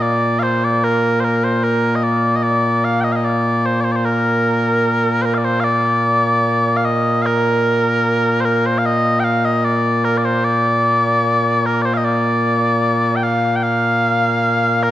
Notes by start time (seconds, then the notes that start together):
Already playing: A#2 A#3
0.02 D5
0.39 C5 F5
0.64 D5
0.84 A#4
1.20 C5
1.24 A#4
1.44 C5
1.64 A#4
1.95 D#5
2.04 D5
2.36 D#5
2.43 D5
2.84 F5
3.01 D#5 G5
3.12 D#5 F5
3.25 D5
3.66 C5
3.80 C5 D5
3.92 D5
3.96 C5
4.05 A#4
5.22 A#4 C5
5.34 D5 F5
5.44 C5
5.60 D5 F5
6.77 F5
6.85 D#5
7.22 F5
7.26 A#4
8.41 C5
8.45 A#4
8.66 C5
8.78 F5
8.86 D#5
9.20 G5
9.24 F5
9.45 D#5
9.65 D5
10.05 A#4
10.18 D5
10.25 C5
10.44 D5
11.66 A#4
11.82 C5 D5
11.94 D#5 F5
12.05 D5
13.16 G5
13.23 F5
13.56 G5
13.63 F5
14.83 A#4